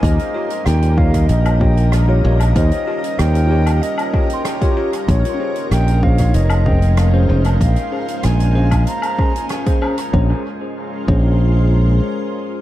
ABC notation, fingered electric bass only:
X:1
M:4/4
L:1/8
Q:1/4=95
K:Bbdor
V:1 name="Fingered electric bass" clef=bass
E,, z E,,2 B,,,3 B,,, | E,, z E,,2 z4 | B,,, z B,,,2 F,,,3 F,,, | B,,, z B,,,2 z4 |
B,,, z2 B,,,3 z2 |]